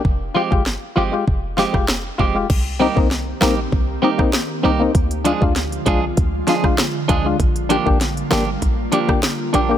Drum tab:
CC |----------------|x---------------|----------------|----------------|
HH |----------------|----------------|xxx-xxx-x-x-x-x-|xxx-xxx-x-x-x-x-|
SD |----o-----oro---|----o-o----ro---|----o-----oro---|----o-o----ro---|
BD |o--o----o--o--o-|o--o----o--o----|o--o--o-o--o--o-|o--o----o--o----|